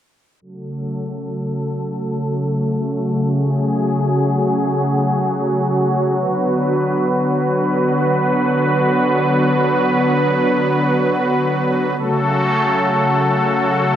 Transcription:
analog synth pad
0.42 C#3 F#3 A3 F#4 A4
3.31 G#4
6.20 D3 B3 B4
11.98 C#3 F#3 A3 F#4 A4

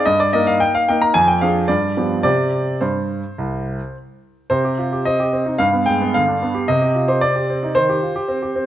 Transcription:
grand piano
0.06 G2 D#5
0.20 D5
0.33 A#3 D#4 A#4 D#5
0.47 F5
0.60 G5
0.75 F5
0.89 A#3 D#4 A#4 G5
1.02 A#5
1.14 F2 G#5
1.28 G5
1.41 F3 D4 G#4 F5
1.68 G2 D5
1.97 F3 B3 G4
2.23 C3 C4 G4 D5
2.81 G2 C5
3.38 C2
4.50 C3 C5
4.65 G4
4.78 F4
4.93 G4
5.05 C4 D#5
5.20 G4
5.33 C4
5.46 D#4
5.58 G2 F5
5.73 B3
5.86 G#3 G5
6.01 B3
6.14 D3 F5
6.28 D4
6.42 B3
6.55 G4
6.68 C3 D#5
6.82 G4
6.95 F4
7.08 G4 C5
7.21 C4 D5
7.36 G4
7.50 C4
7.63 D#4
7.75 D#3 C5
7.89 G4
8.02 F4
8.16 G4
8.28 C4
8.42 G4
8.56 C4

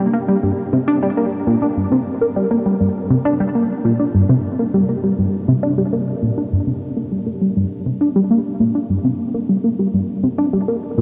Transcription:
synth arpeggio sound
0.14 A#3
0.28 G3
0.43 G2
0.73 C3
0.88 D4
1.03 G3
1.17 A#3
1.47 A#2
1.62 D4
1.77 G2
1.92 C3
2.21 A#3
2.36 G3
2.51 A#3
2.66 G3
2.81 G2
3.10 C3
3.25 D4
3.40 G3
3.55 A#3
3.85 A#2
4.00 D4
4.15 G2
4.29 C3
4.59 A#3
4.74 G3
4.89 A#3
5.04 G3
5.18 G2
5.48 C3
5.63 D4
5.78 G3
5.93 A#3
6.23 A#2
6.38 D4
6.52 G2
6.67 C3
6.97 A#3
7.12 G3
7.27 A#3
7.41 G3
7.56 G2
7.86 C3
8.01 D4
8.16 G3
8.31 A#3
8.60 A#2
8.75 D4
8.90 G2
9.05 C3
9.34 A#3
9.49 G3
9.64 A#3
9.79 G3
9.94 G2
10.23 C3
10.38 D4
10.53 G3
10.68 A#3
10.98 A#2

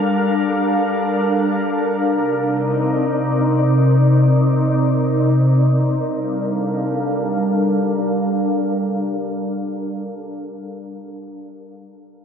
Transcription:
ambient pad
Already playing: G3 D4 A4 A#4 F5
2.08 C3 C4 D#4 D5
6.02 G3 D4 A4 A#4 F5

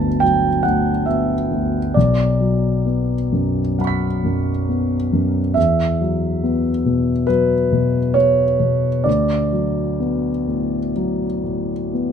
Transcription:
grand piano
Already playing: G1 D2 F#3 B3 A5 B5
0.20 F#3 G5
0.63 D2 F#5
1.06 B3 E5
1.51 D2
1.94 B1 D5
2.40 F#3
2.86 B3
3.32 F#2
3.79 F#3 F#5 B5
3.85 C#6 B6
4.24 F#2
4.69 B3
5.13 F#2
5.54 E2 E5
6.01 F#3
6.43 B3
6.86 B2
7.27 F#3 B4
7.72 B2
8.14 B3 C#5
8.60 B2
9.04 D2 D5
9.52 F#3
10.00 B3
10.47 A2
10.96 F#3
11.44 A2
11.93 B3

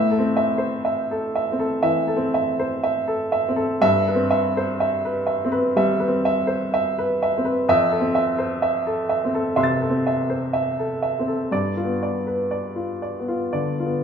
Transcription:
upright piano
Already playing: A2 E5
0.11 A4
0.19 C4
0.37 E5
0.58 C5
0.85 E5
1.11 A4
1.35 E5
1.52 C4
1.59 A4
1.83 E3 E5
2.08 A4
2.17 C4
2.34 E5
2.60 C5
2.83 E5
3.08 A4
3.32 E5
3.49 C4
3.56 A4
3.82 G2 E5
4.08 B4
4.15 C4
4.31 E5
4.57 C5
4.80 E5
5.05 B4
5.27 E5
5.45 C4
5.52 B4
5.76 G3 E5
6.00 B4
6.08 C4
6.25 E5
6.47 C5
6.74 E5
6.98 B4
7.23 E5
7.38 C4
7.45 B4
7.68 F2 E5
7.92 A4
8.01 C4
8.15 E5
8.39 C5
8.62 E5
8.87 A4
9.09 E5
9.25 C4
9.34 A4
9.56 C3 E5 C6 E6
9.63 A6
9.82 A4
9.89 C4
10.07 E5
10.30 C5
10.53 E5
10.79 A4
11.02 E5
11.19 C4
11.28 A4
11.52 G2 D5
11.77 F4
11.84 B3
12.03 D5
12.27 B4
12.51 D5
12.76 F4
13.02 D5
13.19 B3
13.28 F4
13.53 D3 D5
13.80 F4
13.86 B3

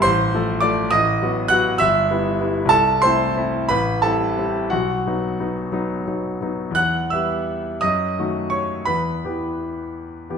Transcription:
grand piano
0.02 A1 C5 C6
0.34 F3 A3 A4
0.60 F3 A3 A4 D5 D6
0.91 A1 D#5 D#6
1.22 F#3 B3 F#4
1.48 F#3 B3 F#4 F#5 F#6
1.78 G1 E5 E6
2.11 G3 B3 E4
2.40 G3 B3 E4
2.65 C2 A5
2.70 A4
3.02 A3 C4 E4 C5 C6
3.37 A3 C4 E4
3.69 A1 B4 B5
4.02 G3 C4 E4 A4 A5
4.38 G3 C4 E4
4.70 B1 F#4 F#5
5.07 F#3 B3 D#4
5.40 F#3 B3 D#4
5.72 F#3 B3 D#4
6.07 F#3 B3 D#4
6.41 F#3 B3 D#4
6.71 E2
6.75 F#5 F#6
7.10 G3 B3 G4 E5 E6
7.81 F#2 D#5 D#6
8.19 D#3 A3 F#4
8.50 C#5 C#6
8.85 E2 B4 B5
9.25 E3 B3 G4
10.30 E3 B3 G4

